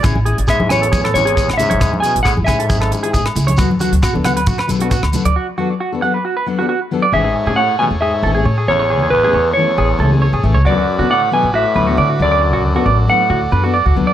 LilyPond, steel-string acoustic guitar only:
\new Staff \with { instrumentName = "Steel-string acoustic guitar" } { \time 4/4 \key a \major \tempo 4 = 136 <cis' e' gis'>16 r16 <cis' e' gis'>16 r8 <e' gis'>16 <cis' e' gis'>16 r8. <cis' e' gis'>16 <e' gis'>16 r8 <cis' e' gis'>16 r16 | r8 <cis' e' gis'>16 r8 <e' gis'>16 <cis' e' gis'>16 r8. <cis' e' gis'>16 <e' gis'>16 r8 <e' gis'>16 r16 | <fis b d' a'>16 r16 <fis b d' a'>16 r8 <b d' a'>16 <fis b d' a'>16 r8. <fis b d' a'>16 <b d' a'>16 r8 <fis b d' a'>16 r16 | r8 <fis b d' a'>16 r8 <b d' a'>16 <fis b d' a'>16 r8. <fis b d' a'>16 <b d' a'>16 r8 <fis b d' a'>16 r16 |
<e a cis' gis'>16 r8 <a cis' gis'>16 r8 <e a cis' gis'>16 r8. <e a cis' gis'>16 <a cis' gis'>16 r8 <e a cis' gis'>16 r16 | r8. <a cis' gis'>16 r8 <e a cis' gis'>16 r8. <e a cis' gis'>16 <a cis' gis'>16 r8 <e a cis' gis'>16 r16 | <fis b d' a'>16 r8 <b d' a'>16 r8 <fis b d' a'>16 r8. <fis b d' a'>16 <b d'>16 r8 <fis b d' a'>16 r16 | r8. <b d' a'>16 r8 <fis b d' a'>16 r8. <fis b d' a'>16 <b d' a'>16 r8 <fis b d'>16 r16 | }